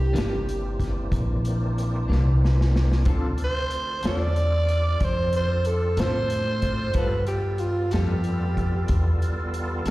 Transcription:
0.00 0.11 C2 medium
0.00 3.04 E3 medium
0.00 3.03 A#3 medium
0.00 3.04 C4 medium
0.00 3.03 D4 medium
0.00 1.08 G4 medium
0.13 1.09 G1 medium
0.13 0.34 C3 medium
0.13 0.34 E3 medium
0.13 0.34 A#3 medium
0.13 0.33 D4 medium
0.13 closed hi-hat medium
0.18 snare medium
0.49 closed hi-hat soft
0.80 kick medium
0.80 snare soft
0.80 closed hi-hat soft
1.12 2.06 A#1 medium
1.12 kick medium
1.12 closed hi-hat medium
1.45 closed hi-hat soft
1.78 closed hi-hat soft
2.08 3.04 C2 medium
2.08 2.29 C3 soft
2.08 2.29 E3 medium
2.08 2.29 A#3 medium
2.08 2.28 D4 medium
2.08 snare soft
2.45 snare medium
2.61 snare medium
2.76 snare medium
2.92 snare medium
3.05 4.01 D2 medium
3.05 3.26 D3 medium
3.05 6.92 C4 medium
3.05 3.27 C4 medium
3.05 6.92 D4 medium
3.05 6.92 F4 medium
3.05 3.27 F4 medium
3.05 6.92 A4 medium
3.05 3.27 A4 medium
3.05 kick medium
3.05 closed hi-hat medium
3.38 closed hi-hat soft
3.44 4.03 C5 medium
3.71 closed hi-hat soft
4.03 4.98 E2 medium
4.03 4.24 D3 soft
4.03 4.24 C4 soft
4.03 4.23 F4 soft
4.03 4.23 A4 medium
4.03 snare medium
4.03 closed hi-hat medium
4.08 5.06 D5 loud
4.36 closed hi-hat soft
4.69 closed hi-hat soft
5.00 5.96 F2 medium
5.00 5.35 C5 medium
5.00 kick medium
5.00 closed hi-hat medium
5.33 5.68 C5 medium
5.33 closed hi-hat soft
5.65 6.01 A4 medium
5.65 closed hi-hat soft
5.97 6.92 A2 medium
5.97 6.19 D3 soft
5.97 6.18 C4 medium
5.97 6.18 F4 medium
5.97 6.18 A4 medium
5.97 6.97 C5 medium
5.97 snare medium
5.97 closed hi-hat medium
6.30 closed hi-hat medium
6.62 kick medium
6.62 closed hi-hat medium
6.94 7.90 G2 medium
6.94 7.14 G3 medium
6.94 9.90 G3 medium
6.94 7.15 B3 medium
6.94 9.90 B3 medium
6.94 7.15 F4 medium
6.94 7.15 A4 medium
6.94 9.90 A4 medium
6.94 7.27 B4 medium
6.94 kick medium
6.94 closed hi-hat medium
6.98 9.90 F4 medium
7.27 7.61 G4 medium
7.27 closed hi-hat medium
7.58 7.94 F4 medium
7.58 closed hi-hat soft
7.91 8.87 F2 medium
7.91 8.13 G3 soft
7.91 8.13 B3 soft
7.91 8.12 F4 medium
7.91 9.22 G4 medium
7.91 8.12 A4 medium
7.91 snare medium
7.91 closed hi-hat medium
8.24 closed hi-hat soft
8.57 kick medium
8.57 closed hi-hat soft
8.88 9.84 E2 medium
8.88 kick medium
8.88 closed hi-hat medium
9.22 closed hi-hat soft
9.54 closed hi-hat soft
9.86 9.90 D2 medium
9.86 9.90 A4 medium
9.86 closed hi-hat medium

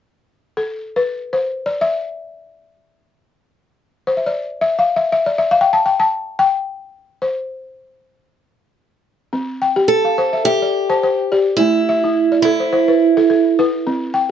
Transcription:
0.57 0.96 A4 medium
0.96 1.31 B4 medium
1.33 1.62 C5 medium
1.66 1.82 D5 medium
1.81 3.13 E5 medium
4.07 4.17 C5 medium
4.17 4.24 E5 soft
4.26 4.62 D5 medium
4.61 4.78 E5 medium
4.79 4.97 F5 medium
4.96 5.11 E5 medium
5.12 5.25 E5 medium
5.26 5.37 D5 medium
5.38 5.51 E5 medium
5.51 5.61 F5 medium
5.61 5.73 G5 medium
5.73 5.86 A5 medium
5.86 6.00 G5 medium
6.00 6.40 A5 medium
6.39 7.25 G5 medium
7.22 8.28 C5 medium
9.33 9.61 C4 medium
9.62 10.04 G5 medium
9.76 10.04 G4 medium
9.88 10.45 A4 medium
10.05 10.46 F5 soft
10.18 10.46 C5 medium
10.33 10.45 E5 medium
10.45 11.62 G4 medium
10.45 10.74 E5 medium
10.62 11.03 D5 medium
10.90 11.02 C5 medium
10.90 11.31 A5 medium
11.03 11.46 C5 medium
11.32 11.60 G4 medium
11.32 11.74 D5 medium
11.57 11.88 A3 medium
11.57 12.39 E4 medium
11.89 12.31 E5 medium
12.04 12.31 E4 medium
12.32 12.73 D5 medium
12.42 13.52 E4 medium
12.42 12.73 A4 medium
12.60 12.71 C5 medium
12.73 13.01 C5 medium
12.88 13.29 B4 medium
13.17 13.29 A4 medium
13.17 13.58 E5 medium
13.30 13.72 A4 medium
13.59 13.86 E4 medium
13.59 14.01 B4 medium
13.87 14.14 C4 medium
14.14 14.31 G5 medium

